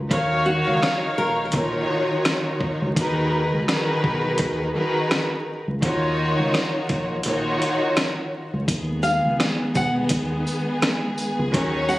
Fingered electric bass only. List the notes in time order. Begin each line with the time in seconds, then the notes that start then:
0.11 D#2
0.67 C#2
1.18 A#1
1.54 A#1
2.82 C#2
2.97 D#2
3.53 C#2
4.04 B1
4.40 D#2
5.68 C#2
5.82 D#2
6.39 C#2
6.90 A#1
7.26 A#1
8.53 C#2
8.68 D#2
9.25 C#2
9.76 B1
10.11 D#2
11.39 C#2
11.54 D#2